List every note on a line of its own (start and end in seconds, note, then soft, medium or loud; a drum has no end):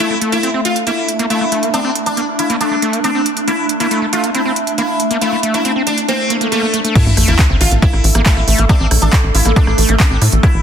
0.00 6.94 A3 medium
0.00 6.98 D4 medium
0.00 0.17 E4 loud
0.11 0.15 A3 medium
0.22 0.34 A3 medium
0.22 closed hi-hat medium
0.32 0.39 A#3 medium
0.32 0.50 E4 medium
0.32 closed hi-hat medium
0.43 0.50 C4 medium
0.43 closed hi-hat medium
0.54 0.61 C4 medium
0.65 0.77 F4 medium
0.65 closed hi-hat medium
0.76 closed hi-hat medium
0.87 0.91 A#3 medium
0.87 1.10 E4 medium
0.87 closed hi-hat medium
1.08 closed hi-hat medium
1.19 1.26 A#3 loud
1.19 closed hi-hat medium
1.30 1.40 A3 medium
1.30 1.53 E4 medium
1.30 closed hi-hat medium
1.41 1.45 A3 medium
1.52 1.64 A3 medium
1.52 closed hi-hat medium
1.63 1.69 A#3 medium
1.63 closed hi-hat medium
1.74 1.80 C4 medium
1.74 1.91 D4 medium
1.74 closed hi-hat medium
1.85 1.91 C4 medium
1.95 closed hi-hat medium
2.06 2.24 D4 medium
2.06 closed hi-hat medium
2.17 2.21 A#3 medium
2.17 closed hi-hat medium
2.39 2.51 E4 medium
2.39 closed hi-hat medium
2.50 2.56 A#3 loud
2.50 closed hi-hat medium
2.61 2.71 A3 medium
2.61 2.84 D4 medium
2.61 closed hi-hat medium
2.72 2.76 A3 medium
2.82 2.95 A3 medium
2.82 closed hi-hat medium
2.93 3.00 A#3 medium
2.93 closed hi-hat medium
3.04 3.11 C4 medium
3.04 3.27 D4 medium
3.04 closed hi-hat medium
3.15 3.22 C4 medium
3.26 closed hi-hat medium
3.37 closed hi-hat medium
3.48 3.52 A#3 medium
3.48 3.65 E4 medium
3.48 closed hi-hat medium
3.69 closed hi-hat loud
3.80 3.87 A#3 loud
3.80 3.98 E4 medium
3.80 closed hi-hat medium
3.91 4.01 A3 medium
3.91 closed hi-hat medium
4.02 4.06 A3 medium
4.13 4.25 A3 medium
4.13 4.24 F4 medium
4.13 closed hi-hat medium
4.24 4.30 A#3 medium
4.24 closed hi-hat medium
4.35 4.41 C4 medium
4.35 4.58 E4 medium
4.35 closed hi-hat medium
4.45 4.52 C4 medium
4.56 closed hi-hat medium
4.67 closed hi-hat medium
4.78 4.82 A#3 medium
4.78 5.01 E4 medium
4.78 closed hi-hat medium
5.00 closed hi-hat medium
5.11 5.17 A#3 loud
5.11 closed hi-hat medium
5.21 5.31 A3 medium
5.21 5.39 E4 loud
5.21 closed hi-hat medium
5.32 5.36 A3 medium
5.43 5.56 A3 medium
5.43 closed hi-hat loud
5.54 5.61 A#3 medium
5.54 5.72 E4 medium
5.54 closed hi-hat medium
5.65 5.72 C4 medium
5.65 closed hi-hat medium
5.76 5.82 C4 medium
5.87 5.98 D4 medium
5.87 closed hi-hat medium
5.98 closed hi-hat medium
6.08 6.12 A#3 medium
6.08 6.32 C4 medium
6.08 closed hi-hat medium
6.08 swell medium
6.30 6.37 A#3 medium
6.30 closed hi-hat loud
6.41 6.48 A#3 medium
6.41 closed hi-hat medium
6.52 6.75 A3 medium
6.52 6.62 A#3 loud
6.52 closed hi-hat medium
6.63 6.67 A#3 medium
6.74 6.80 A3 medium
6.74 closed hi-hat loud
6.85 6.94 A3 medium
6.85 closed hi-hat medium
6.95 7.05 A3 medium
6.95 10.62 A3 medium
6.95 7.13 E4 medium
6.95 10.45 A4 medium
6.95 kick loud
6.95 closed hi-hat medium
6.95 crash loud
6.95 sub drop medium
7.06 7.13 A1 medium
7.06 7.10 A3 medium
7.17 7.24 A1 loud
7.17 7.30 A3 medium
7.17 cross-stick soft
7.17 open hi-hat loud
7.28 7.35 A1 medium
7.28 7.35 A#3 medium
7.28 7.45 E4 medium
7.28 closed hi-hat medium
7.39 7.46 C4 medium
7.39 kick loud
7.39 cross-stick medium
7.39 clap loud
7.39 closed hi-hat medium
7.50 7.57 G1 medium
7.50 7.56 C4 medium
7.61 7.68 A1 loud
7.61 7.72 F4 medium
7.61 cross-stick soft
7.61 open hi-hat loud
7.72 7.79 A1 medium
7.72 closed hi-hat medium
7.82 7.86 A#3 medium
7.82 8.06 E4 medium
7.82 kick loud
7.82 closed hi-hat medium
7.93 8.00 A1 medium
7.93 cross-stick soft
8.04 8.11 A1 loud
8.04 open hi-hat loud
8.15 8.22 A1 medium
8.15 8.22 A#3 loud
8.15 cross-stick medium
8.15 closed hi-hat medium
8.26 8.36 A3 medium
8.26 8.49 E4 medium
8.26 kick loud
8.26 clap loud
8.26 closed hi-hat medium
8.37 8.44 A1 medium
8.37 8.41 A3 medium
8.37 cross-stick soft
8.48 8.55 A1 loud
8.48 8.60 A3 medium
8.48 open hi-hat loud
8.58 8.66 A1 medium
8.58 8.65 A#3 medium
8.58 closed hi-hat medium
8.69 8.76 C4 medium
8.69 8.87 D4 loud
8.69 kick loud
8.69 cross-stick soft
8.69 closed hi-hat medium
8.80 8.87 A1 medium
8.80 8.87 C4 medium
8.91 8.98 A#1 loud
8.91 cross-stick medium
8.91 open hi-hat loud
9.02 9.09 A1 medium
9.02 9.19 D4 medium
9.02 closed hi-hat medium
9.13 9.17 A#3 medium
9.13 kick loud
9.13 cross-stick soft
9.13 clap loud
9.13 closed hi-hat medium
9.24 9.31 A1 medium
9.35 9.42 A1 loud
9.35 9.46 E4 medium
9.35 open hi-hat loud
9.45 9.53 A1 medium
9.45 9.52 A#3 loud
9.45 cross-stick soft
9.45 closed hi-hat medium
9.56 9.66 A3 medium
9.56 9.79 D4 medium
9.56 kick loud
9.56 closed hi-hat medium
9.67 9.74 A1 medium
9.67 9.71 A3 medium
9.67 cross-stick medium
9.78 9.85 A1 loud
9.78 9.90 A3 medium
9.78 open hi-hat loud
9.89 9.96 A1 loud
9.89 9.96 A#3 medium
9.89 cross-stick soft
9.89 closed hi-hat medium
10.00 10.06 C4 medium
10.00 10.23 D4 loud
10.00 kick loud
10.00 clap loud
10.00 closed hi-hat medium
10.11 10.18 A1 medium
10.11 10.17 C4 medium
10.22 10.29 A2 loud
10.22 cross-stick soft
10.22 open hi-hat loud
10.32 10.40 A1 loud
10.32 closed hi-hat medium
10.43 10.47 A#3 medium
10.43 10.62 E4 medium
10.43 10.61 E4 loud
10.43 kick loud
10.43 cross-stick medium
10.43 closed hi-hat medium
10.54 10.61 A1 medium